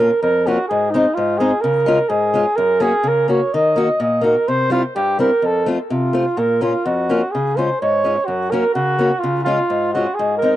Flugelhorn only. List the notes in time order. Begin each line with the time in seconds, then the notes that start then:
Already playing: A#4
0.22 A#4
0.47 F#4
0.68 G#4
0.91 D#4
1.14 F4
1.38 G#4
1.61 A#4
2.09 G#4
2.56 A#4
2.81 G#4
3.08 A#4
3.30 C#5
3.54 D#5
4.02 D#5
4.25 A#4
4.48 C5
4.72 F4
4.96 G4
5.20 A#4
5.46 A4
5.92 F4
6.39 A#4
6.63 F4
6.86 F#4
7.31 G#4
7.57 C5
7.81 C#5
8.26 F#4
8.50 A#4
8.74 F#4
9.19 F4
9.44 F4
9.93 F#4
10.15 G#4
10.37 A#4